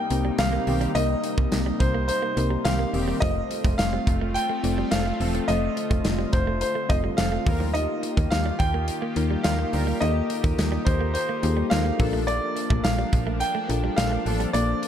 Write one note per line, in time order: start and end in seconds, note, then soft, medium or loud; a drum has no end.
0.00 3.18 C3 medium
0.00 3.18 G3 medium
0.00 0.11 A#3 medium
0.00 3.18 A#3 medium
0.00 0.11 C4 medium
0.00 0.11 D#4 medium
0.00 3.18 D#4 medium
0.00 0.11 G4 medium
0.00 0.12 A#4 medium
0.00 0.41 G5 loud
0.10 0.31 C2 medium
0.10 0.64 A#3 medium
0.10 0.64 C4 medium
0.10 0.64 D#4 medium
0.10 0.64 G4 medium
0.10 0.65 A#4 medium
0.10 muted clean electric guitar stroke medium
0.10 closed hi-hat medium
0.25 0.35 G3 medium
0.39 0.59 C2 loud
0.39 0.51 D#3 medium
0.39 0.51 C4 medium
0.39 0.51 G4 medium
0.39 0.97 F5 loud
0.39 snare loud
0.39 closed hi-hat loud
0.39 tambourine medium
0.53 0.63 A#3 medium
0.67 0.88 B1 loud
0.67 0.91 D#3 loud
0.67 0.91 C4 loud
0.67 0.91 G4 loud
0.67 muted clean electric guitar stroke soft
0.67 open hi-hat medium
0.81 0.91 G3 medium
0.81 closed hi-hat medium
0.95 1.16 C2 loud
0.95 1.67 A#3 medium
0.95 1.05 C4 medium
0.95 1.67 C4 medium
0.95 1.67 D#4 medium
0.95 1.67 G4 medium
0.95 1.67 A#4 medium
0.95 1.76 D#5 loud
0.95 closed hi-hat medium
1.24 muted clean electric guitar stroke soft
1.24 closed hi-hat medium
1.38 1.48 C2 medium
1.38 1.48 A#3 medium
1.38 kick loud
1.52 1.72 C2 loud
1.52 snare loud
1.52 closed hi-hat medium
1.52 tambourine medium
1.66 1.76 G3 medium
1.80 2.11 C2 loud
1.80 2.06 C5 medium
1.80 muted clean electric guitar stroke soft
1.80 kick loud
1.80 closed hi-hat medium
1.95 2.04 A#3 medium
2.08 2.67 C5 loud
2.08 closed hi-hat medium
2.22 2.32 A#3 medium
2.37 2.57 C2 loud
2.37 2.90 A#3 medium
2.37 2.90 C4 medium
2.37 2.90 D#4 medium
2.37 2.91 G4 medium
2.37 2.91 A#4 medium
2.37 muted clean electric guitar stroke soft
2.37 closed hi-hat medium
2.50 2.60 G3 medium
2.65 2.86 C2 loud
2.65 2.77 D#3 medium
2.65 2.77 C4 medium
2.65 2.77 G4 loud
2.65 3.04 F5 loud
2.65 snare loud
2.65 closed hi-hat loud
2.65 tambourine medium
2.79 2.89 A#3 medium
2.93 3.14 E1 medium
2.93 3.18 D#3 loud
2.93 3.18 C4 loud
2.93 3.18 G4 loud
2.93 muted clean electric guitar stroke soft
2.93 open hi-hat medium
3.08 3.17 G3 medium
3.20 3.42 F1 loud
3.20 3.32 F3 medium
3.20 3.93 A3 medium
3.20 7.42 A3 medium
3.20 3.93 C4 medium
3.20 5.46 C4 medium
3.20 7.42 F4 medium
3.20 3.93 F4 medium
3.20 3.93 A4 medium
3.20 3.93 C5 medium
3.20 3.74 D#5 loud
3.20 kick loud
3.20 closed hi-hat medium
3.51 muted clean electric guitar stroke soft
3.51 closed hi-hat medium
3.65 3.75 F1 loud
3.65 3.74 A3 medium
3.65 kick loud
3.65 closed hi-hat medium
3.78 3.99 F1 medium
3.78 4.31 F5 loud
3.78 snare loud
3.78 closed hi-hat medium
3.78 tambourine medium
3.93 4.03 G3 medium
4.07 4.38 F1 loud
4.07 muted clean electric guitar stroke soft
4.07 kick medium
4.07 closed hi-hat medium
4.21 4.31 A3 medium
4.34 4.93 G5 loud
4.34 closed hi-hat medium
4.50 4.59 A3 medium
4.63 4.84 F1 loud
4.63 5.17 A3 medium
4.63 5.17 C4 medium
4.63 5.17 F4 medium
4.63 5.17 A4 medium
4.63 5.17 D5 medium
4.63 muted clean electric guitar stroke soft
4.63 closed hi-hat medium
4.78 4.88 G3 medium
4.91 5.12 F1 loud
4.91 5.04 F3 medium
4.91 5.04 C4 medium
4.91 5.04 A4 medium
4.91 5.50 F5 loud
4.91 snare loud
4.91 closed hi-hat loud
4.91 tambourine medium
5.06 5.16 A3 medium
5.20 5.41 E1 loud
5.20 5.44 F3 loud
5.20 5.44 C4 loud
5.20 5.44 A4 loud
5.20 muted clean electric guitar stroke soft
5.20 open hi-hat medium
5.35 5.44 F3 medium
5.35 closed hi-hat soft
5.48 5.69 F1 loud
5.48 7.45 D3 medium
5.48 5.58 F3 medium
5.48 6.19 A3 medium
5.48 6.19 C4 medium
5.48 6.20 F4 medium
5.48 6.20 A4 medium
5.48 6.20 C5 medium
5.48 6.29 D#5 loud
5.48 closed hi-hat medium
5.77 muted clean electric guitar stroke soft
5.77 closed hi-hat medium
5.91 6.01 F1 loud
5.91 6.00 A3 medium
5.91 kick loud
5.91 closed hi-hat medium
6.04 6.26 F1 loud
6.04 snare loud
6.04 closed hi-hat medium
6.04 tambourine medium
6.19 6.29 G3 medium
6.33 6.64 F1 loud
6.33 6.60 C5 medium
6.33 muted clean electric guitar stroke soft
6.33 kick loud
6.33 closed hi-hat medium
6.47 6.57 A3 medium
6.61 6.91 C5 medium
6.61 closed hi-hat medium
6.75 6.85 A3 medium
6.89 7.10 F1 loud
6.89 7.43 A3 medium
6.89 7.43 C4 medium
6.89 7.43 F4 medium
6.89 7.43 A4 medium
6.89 7.43 C5 medium
6.89 6.96 D#5 medium
6.89 muted clean electric guitar stroke soft
6.89 kick loud
6.89 closed hi-hat medium
7.04 7.14 G3 medium
7.17 7.39 F1 loud
7.17 7.30 F3 medium
7.17 7.30 C4 medium
7.17 7.30 A4 loud
7.17 7.57 F5 loud
7.17 snare loud
7.17 closed hi-hat loud
7.17 tambourine medium
7.32 7.42 A3 medium
7.46 7.87 D#2 loud
7.46 11.95 D#3 medium
7.46 7.71 G3 medium
7.46 8.37 A#3 medium
7.46 14.22 A#3 medium
7.46 8.37 D#4 medium
7.46 9.71 F4 medium
7.46 8.37 F4 medium
7.46 7.71 F4 loud
7.46 11.95 G4 medium
7.46 8.37 G4 medium
7.46 7.71 A#4 loud
7.46 8.37 A#4 medium
7.46 muted clean electric guitar stroke soft
7.46 kick loud
7.46 open hi-hat medium
7.60 7.70 F3 medium
7.74 7.84 D#4 loud
7.74 8.27 D#5 loud
7.74 closed hi-hat medium
8.03 muted clean electric guitar stroke soft
8.03 closed hi-hat medium
8.17 8.28 D#2 loud
8.17 8.27 A#3 medium
8.17 kick loud
8.17 closed hi-hat medium
8.30 8.52 D#2 loud
8.30 8.60 F5 loud
8.30 snare loud
8.30 closed hi-hat medium
8.30 tambourine medium
8.46 8.55 G3 medium
8.59 8.90 D#2 loud
8.59 9.47 G5 loud
8.59 muted clean electric guitar stroke soft
8.59 kick loud
8.59 closed hi-hat medium
8.74 8.84 A#3 medium
8.88 closed hi-hat medium
9.02 9.12 A#3 medium
9.15 9.37 D#2 loud
9.15 9.69 A#3 medium
9.15 9.70 D#4 medium
9.15 9.70 F4 medium
9.15 9.70 G4 medium
9.15 9.70 A#4 medium
9.15 muted clean electric guitar stroke soft
9.15 closed hi-hat medium
9.31 9.40 G3 medium
9.43 9.65 D#2 loud
9.43 9.57 G3 medium
9.43 9.57 F4 medium
9.43 9.57 A#4 medium
9.43 10.02 F5 loud
9.43 snare loud
9.43 closed hi-hat loud
9.43 tambourine medium
9.59 9.68 A#3 medium
9.73 9.94 D2 loud
9.73 9.97 G3 medium
9.73 11.97 D#4 medium
9.73 9.97 F4 loud
9.73 9.97 A#4 loud
9.73 muted clean electric guitar stroke soft
9.73 open hi-hat medium
9.87 9.97 G3 medium
10.01 10.22 D#2 loud
10.01 10.72 A#3 medium
10.01 10.11 D#4 medium
10.01 10.73 D#4 medium
10.01 10.73 F4 medium
10.01 10.73 G4 medium
10.01 10.08 A4 medium
10.01 10.88 D#5 loud
10.01 closed hi-hat medium
10.09 10.76 A#4 medium
10.30 muted clean electric guitar stroke soft
10.30 closed hi-hat medium
10.44 10.54 D#2 medium
10.44 10.53 A#3 medium
10.44 kick loud
10.44 closed hi-hat medium
10.58 10.79 D#2 medium
10.58 snare loud
10.58 closed hi-hat medium
10.58 tambourine medium
10.72 10.82 G3 medium
10.85 11.17 D#2 loud
10.85 11.12 C5 medium
10.85 muted clean electric guitar stroke soft
10.85 kick loud
10.85 closed hi-hat medium
11.01 11.10 A#3 medium
11.14 11.72 C5 medium
11.14 closed hi-hat medium
11.29 11.39 A#3 medium
11.43 11.63 D#2 loud
11.43 11.96 A#3 medium
11.43 11.96 D#4 medium
11.43 11.96 F4 medium
11.43 11.97 G4 medium
11.43 11.50 G#4 medium
11.43 muted clean electric guitar stroke soft
11.43 closed hi-hat medium
11.50 11.98 A4 medium
11.57 11.67 G3 medium
11.70 11.92 D#2 loud
11.70 11.83 G3 medium
11.70 11.83 F4 medium
11.70 11.83 A#4 loud
11.70 12.10 F5 loud
11.70 snare loud
11.70 closed hi-hat loud
11.70 tambourine medium
11.85 11.95 A#3 medium
11.98 12.40 A#1 loud
11.98 12.23 F3 loud
11.98 14.88 F3 medium
11.98 12.89 A#3 medium
11.98 12.90 D4 medium
11.98 14.88 D4 medium
11.98 12.23 D4 loud
11.98 12.90 F4 medium
11.98 12.23 A4 loud
11.98 12.90 A4 medium
11.98 12.90 A#4 medium
11.98 muted clean electric guitar stroke soft
11.98 kick loud
11.98 open hi-hat medium
12.13 12.23 A3 medium
12.27 12.37 A#3 medium
12.27 12.86 D5 loud
12.27 closed hi-hat medium
12.56 muted clean electric guitar stroke soft
12.56 closed hi-hat medium
12.70 12.81 A#1 loud
12.70 12.80 A3 medium
12.70 kick loud
12.84 13.05 A#1 loud
12.84 13.42 F5 loud
12.84 snare loud
12.84 closed hi-hat medium
12.84 tambourine medium
12.99 13.08 G3 medium
13.12 13.43 A#1 loud
13.12 muted clean electric guitar stroke soft
13.12 kick loud
13.12 closed hi-hat medium
13.27 13.36 A3 medium
13.40 13.99 G5 loud
13.40 closed hi-hat medium
13.55 13.65 A3 medium
13.68 13.90 A#1 loud
13.68 14.22 A#3 medium
13.68 14.22 D4 medium
13.68 14.23 F4 medium
13.68 14.23 A4 medium
13.68 14.23 A#4 medium
13.68 muted clean electric guitar stroke soft
13.68 closed hi-hat medium
13.84 13.93 G3 medium
13.96 14.18 A#1 loud
13.96 14.10 F3 medium
13.96 14.10 D4 medium
13.96 14.10 A4 medium
13.96 14.55 F5 loud
13.96 snare loud
13.96 closed hi-hat loud
13.96 tambourine medium
14.12 14.21 A3 medium
14.26 14.46 A1 loud
14.26 14.50 F3 loud
14.26 14.88 C4 medium
14.26 14.50 D4 loud
14.26 14.50 A4 loud
14.26 muted clean electric guitar stroke soft
14.26 open hi-hat medium
14.40 14.50 G3 medium
14.40 closed hi-hat medium
14.53 14.74 A#1 loud
14.53 14.88 A#3 medium
14.53 14.64 A#3 loud
14.53 14.88 D4 medium
14.53 14.88 F4 medium
14.53 14.88 A4 medium
14.53 14.88 A#4 medium
14.53 14.88 D5 medium
14.53 closed hi-hat medium
14.82 muted clean electric guitar stroke soft
14.82 closed hi-hat medium